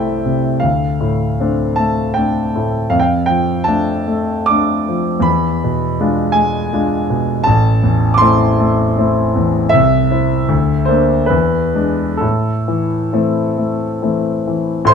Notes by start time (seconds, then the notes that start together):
Already playing: C2 C3 A3 C4 E4 C5 D5 E5 G5
0.25 C3
0.60 D2 F5
1.00 A2
1.40 A3 C4 D4
1.76 A3 A5
2.14 A3 C4 D4 G5
2.55 A2
2.90 F2 F5
2.99 F5 G5
3.26 F3 G5
3.64 A3 D4 A5
4.08 A3
4.46 A3 D4 D6
4.88 F3
5.20 E2 B5
5.64 B2
6.00 G#3 D4 F4
6.32 G#3 G#5
6.73 G#3 D4 F4
7.10 B2
7.44 A1 A5
7.83 E2
8.14 C6 D6
8.21 A3 C4 E4
8.59 A3
8.98 A3 C4 E4
9.35 E2
9.69 C2 E5
10.11 C4 E4
10.49 D2
10.85 A#3 D4 C5
11.26 E2 B4
11.74 G#3 D4
12.17 A2 A4
12.68 E3
13.13 E3 A3 C4
13.58 A3
14.02 E3 A3 C4
14.47 E3
14.85 A2 C5 C6